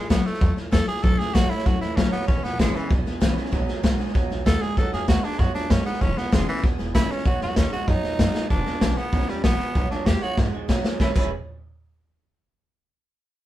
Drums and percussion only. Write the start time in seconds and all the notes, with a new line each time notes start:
0.10 kick, snare, hi-hat pedal
0.26 snare
0.34 snare
0.41 kick, snare
0.57 snare
0.73 kick, snare, hi-hat pedal
0.89 snare
0.97 snare
1.04 kick, snare
1.20 snare
1.35 kick, snare, hi-hat pedal
1.51 snare
1.59 snare
1.66 kick, snare
1.82 snare
1.97 kick, snare, hi-hat pedal
2.13 snare
2.21 snare
2.28 kick, snare
2.44 snare
2.59 kick, snare, hi-hat pedal
2.75 snare
2.91 kick, snare
3.06 snare
3.22 kick, snare, hi-hat pedal
3.37 snare
3.45 snare
3.53 kick, snare
3.68 snare
3.84 kick, snare, hi-hat pedal
4.00 snare
4.08 snare
4.15 kick, snare
4.31 snare
4.46 kick, snare, hi-hat pedal
4.62 snare
4.77 kick, snare
4.93 snare
5.08 kick, snare, hi-hat pedal
5.24 snare
5.31 snare
5.39 kick, snare
5.55 snare
5.70 kick, snare, hi-hat pedal
5.86 snare
5.94 snare
6.01 kick, snare
6.17 snare
6.32 kick, snare, hi-hat pedal
6.48 snare
6.56 snare
6.64 kick, snare
6.79 snare
6.95 kick, snare, hi-hat pedal
7.10 snare
7.18 snare
7.25 kick, snare
7.41 snare
7.56 kick, snare, hi-hat pedal
7.72 snare
7.88 kick, snare
8.04 snare
8.19 kick, snare, hi-hat pedal
8.35 snare
8.50 kick, snare
8.66 snare
8.81 kick, snare, hi-hat pedal
8.97 snare
9.13 kick, snare
9.21 snare
9.28 snare
9.44 kick, snare, hi-hat pedal
9.60 snare
9.75 kick, snare
9.91 snare
10.06 kick, snare, hi-hat pedal
10.22 snare
10.37 kick, snare
10.69 kick, snare, hi-hat pedal
10.84 snare
11.00 kick, snare
11.16 kick, crash